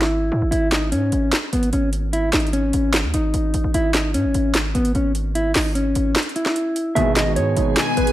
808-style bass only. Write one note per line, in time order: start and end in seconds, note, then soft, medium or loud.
0.00 0.30 G#1 loud
0.32 0.41 G#2 loud
0.42 0.52 G#1 loud
0.52 0.94 G#1 loud
0.92 1.11 G#2 loud
1.12 1.32 G#1 loud
1.53 1.72 G#1 loud
1.73 2.31 G#1 loud
2.33 2.72 G#1 loud
2.74 3.05 G#1 loud
3.04 3.13 D#2 loud
3.14 3.33 G#1 loud
3.34 3.53 G#1 loud
3.54 3.63 G#1 loud
3.64 3.74 G#1 loud
3.74 4.16 G#1 loud
4.14 4.26 G#2 loud
4.24 4.34 G#1 loud
4.35 4.73 G#1 loud
4.75 4.94 G#1 loud
4.95 5.53 G#1 loud
5.55 5.94 G#1 loud
5.96 6.15 G#1 loud
6.96 7.38 G#1 loud
7.37 7.56 G#2 loud
7.57 7.76 G#1 loud
7.97 8.12 G#1 loud